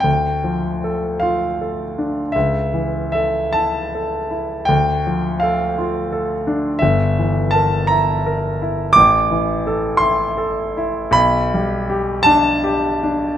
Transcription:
\new Staff \with { instrumentName = "Grand piano" } { \time 6/8 \key d \minor \tempo 4. = 55 << { g''4. f''4. | e''4 e''8 a''4. | g''4 f''2 | e''4 a''8 bes''4. |
\key a \minor d'''4. c'''4. | b''4. a''4. | } \\ { d,8 f8 a'8 f'8 a'8 d'8 | cis,8 e8 a'8 e'8 a'8 e'8 | d,8 f8 a'8 f'8 a'8 d'8 | g,,8 e8 bes'8 e'8 bes'8 e'8 |
a,,8 e8 a'8 e'8 a'8 e'8 | b,,8 g8 g'8 d'8 g'8 d'8 | } >> }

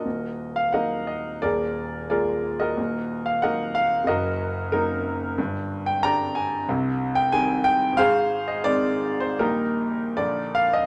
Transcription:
<<
  \new Staff \with { instrumentName = "Grand piano" } { \time 2/4 \key ees \minor \tempo 4 = 91 << { ees''8. f''16 ges''8 ees''8 | d''4 d''8. ees''16~ | ees''8. f''16 ges''8 f''8 | ees''4 bes'8 r8 |
\key aes \lydian r8. g''16 bes''8 aes''8 | r8. g''16 aes''8 g''8 | f''8. ees''16 d''8. c''16 | bes'4 d''8 f''16 ees''16 | } \\ { <ges' bes'>8. r16 <bes' ees''>8 r8 | <aes' bes'>4 <aes' bes'>8. <ges' bes'>16~ | <ges' bes'>8. r16 <bes' ees''>8 r8 | <ges' bes'>4 <ees' ges'>8 r8 |
r4 <d'' g''>8 r8 | r2 | <aes' c''>8. r4 r16 | <ees' g'>4. r8 | } >> }
  \new Staff \with { instrumentName = "Grand piano" } { \clef bass \time 2/4 \key ees \minor <ees,, ees,>4 <ges bes ees'>4 | <ees,, ees,>4 <aes bes f'>4 | <ees,, ees,>4 <ges bes ees'>4 | <ges,, ges,>4 <ges bes>4 |
\key aes \lydian <g,, g,>4 <d g d'>4 | <c, c>4 <ees g c'>4 | <aes,, aes,>4 <ees aes c'>4 | <bes,, bes, ees g bes>4 <bes,, bes, d f bes>4 | }
>>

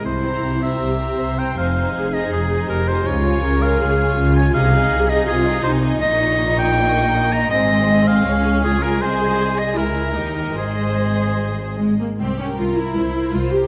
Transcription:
<<
  \new Staff \with { instrumentName = "Violin section" } { \time 4/4 \key aes \major \tempo 4 = 159 r8 bes''4 bes''4 bes''4 bes''8 | aes''8 aes''4 aes''4 aes''4 aes''8 | r8 aes''4 aes''4 aes''4 aes''8 | aes''8 aes''4 aes''4 aes''4 aes''8 |
des'''1 | c'''2 aes''2~ | aes''2 bes''2 | c'''2.~ c'''8 r8 |
r8 bes'4 bes'4 bes'4 bes'8 | }
  \new Staff \with { instrumentName = "Oboe" } { \time 4/4 \key aes \major c''4. e''2 g''8 | f''4. ees''8 aes'4 bes'8 c''8 | des''4. f''2 aes''8 | f''4. ees''8 aes'4 c''8 r8 |
ees''4. g''2 bes''8 | ees''4. f''4. aes'8 bes'8 | c''4. ees''8 bes'4. bes'8 | aes'2. r4 |
r1 | }
  \new Staff \with { instrumentName = "Violin section" } { \time 4/4 \key aes \major << { r8 c''4 c''4 c''4 c''8 | c''8 c''4 c''4 c''4 c''8 | r8 des''4 des''4 des''4 des''8 | ees''8 ees''4 ees''4 ees''4 ees''8 |
ees''1~ | ees''2 des''2 | ees''2 fes''4 ees''4~ | ees''2.~ ees''8 r8 |
g'4 bes'4 c''4 c''4 | } \\ { r8 c'4 c'4 c'4 c'8 | ees'8 ees'4 ees'4 ees'4 ees'8 | r8 f'4 f'4 f'4 f'8 | ees'8 ees'4 ees'4 ees'4 ees'8 |
ees'1 | aes'1~ | aes'2. g'4 | aes'2.~ aes'8 r8 |
r1 | } >> }
  \new Staff \with { instrumentName = "Viola section" } { \time 4/4 \key aes \major e'2 g'4 c''4~ | c''4 aes'2 g'4 | f'4 bes'4 aes'4 f'4 | aes'2 f'4 ees'4~ |
ees'2 bes2 | c'2 des'4 f'4 | aes'2 fes'4 ees'4 | c''2. aes8 bes8 |
c'8 des'8 f'8 e'4. f'8 g'8 | }
  \new Staff \with { instrumentName = "Cello section" } { \clef bass \time 4/4 \key aes \major c4 c4 c4 c4 | f,4 f,4 f,4 f,4 | des4 des4 des4 des4 | c4 c4 c4 c4 |
bes,1 | aes,2 des,2 | c,2 des,4 ees,4 | aes,2.~ aes,8 r8 |
c,4 c,4 c,4 c,4 | }
  \new Staff \with { instrumentName = "Double bass section" } { \clef bass \time 4/4 \key aes \major c,4 c,4 c,4 c,4 | f,,4 f,,4 f,,4 f,,4 | des,4 des,4 des,4 des,4 | c,4 c,4 c,4 c,4 |
bes,,1 | aes,,2 des,2 | c,2 des,4 ees,4 | aes,,2.~ aes,,8 r8 |
c,4 c,4 c,4 c,4 | }
>>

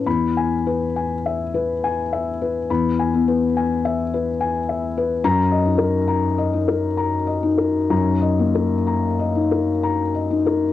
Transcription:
<<
  \new Staff \with { instrumentName = "Felt piano" } { \time 3/4 \key dis \phrygian \tempo 4 = 68 << { b''8 r2 r8 | r2. | ais''8 r2 r8 | r2. | } \\ { \tuplet 3/2 { r8 gis''8 b'8 gis''8 e''8 b'8 gis''8 e''8 b'8 } | \tuplet 3/2 { b''8 gis''8 b'8 gis''8 e''8 b'8 gis''8 e''8 b'8 } | \tuplet 3/2 { r8 dis''8 ais'8 ais''8 dis''8 ais'8 ais''8 dis''8 ais'8 } | \tuplet 3/2 { ais''8 dis''8 ais'8 ais''8 dis''8 ais'8 ais''8 dis''8 ais'8 } | } >> }
  \new Staff \with { instrumentName = "Felt piano" } { \time 3/4 \key dis \phrygian e,2. | e,8 b4 r4. | fis,8 dis'4 dis'4 dis'8 | fis,8 ais4 dis'4 dis'8 | }
>>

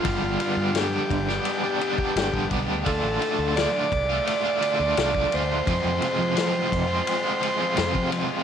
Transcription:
<<
  \new Staff \with { instrumentName = "Transistor combo organ" } { \time 4/4 \key d \minor \tempo 4 = 85 f'4 g'2~ g'8 r8 | a'4 d''4 d''4. c''8~ | c''2.~ c''8 r8 | }
  \new Staff \with { instrumentName = "Overdriven electric guitar" } { \time 4/4 \key d \minor <g, d g b d' g'>8 <g b d' g'>8 <g, d g b d' g'>16 <g b d' g'>8 <g b d' g'>8 <g b d' g'>16 <g b d' g'>16 <g b d' g'>16 <g, d g b d' g'>16 <g b d' g'>16 <g b d' g'>8 | <d a d' f'>8 <d a d' f'>8 <d a d' f'>16 <a d' f'>8 <a d' f'>8 <a d' f'>16 <d a d' f'>16 <a d' f'>16 <d a d' f'>16 <a d' f'>16 <d a d' f'>8 | <f, c f aes c' f'>8 <f aes c' f'>8 <f, c f aes c' f'>16 <f aes c' f'>8 <f aes c' f'>8 <f aes c' f'>16 <f aes c' f'>16 <f aes c' f'>16 <f, c f aes c' f'>16 <f aes c' f'>16 <f aes c' f'>8 | }
  \new Staff \with { instrumentName = "Fingered electric bass" } { \clef bass \time 4/4 \key d \minor g,,16 g,,16 r16 g,8. g,,8 r4 g,,16 a,,16 b,,16 d,16 | d,16 a,,16 r16 d,8 r16 c,8 r8. d,16 c,8 d,8 | f,16 f,16 r16 f8. f,8 r4 f,16 f8 r16 | }
  \new DrumStaff \with { instrumentName = "Drums" } \drummode { \time 4/4 <bd cymr>8 cymr8 <cymr sn>8 <bd cymr>16 sn16 cymr8 cymr16 bd16 <cymr sn>16 bd16 <bd cymr>8 | <bd cymr>8 cymr8 <cymr sn>8 <bd cymr>8 cymr8 cymr8 <cymr sn>16 bd16 cymr8 | <bd cymr>8 cymr8 <cymr sn>8 <bd cymr>8 cymr8 cymr8 <cymr sn>16 bd16 cymr8 | }
>>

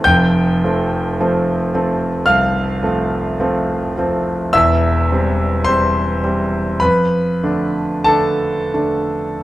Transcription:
<<
  \new Staff \with { instrumentName = "Grand piano" } { \time 4/4 \key f \lydian \tempo 4 = 52 <g'' g'''>2 <f'' f'''>4. r8 | <e'' e'''>4 <c'' c'''>4 <b' b''>4 <a' a''>4 | }
  \new Staff \with { instrumentName = "Grand piano" } { \time 4/4 \key f \lydian <f,, f,>8 <f a c'>8 <f a c'>8 <f a c'>8 c,8 <f a c'>8 <f a c'>8 <f a c'>8 | <e,, e,>8 <g c'>8 <g c'>8 <g c'>8 f,8 <d a d'>8 <d a d'>8 <d a d'>8 | }
>>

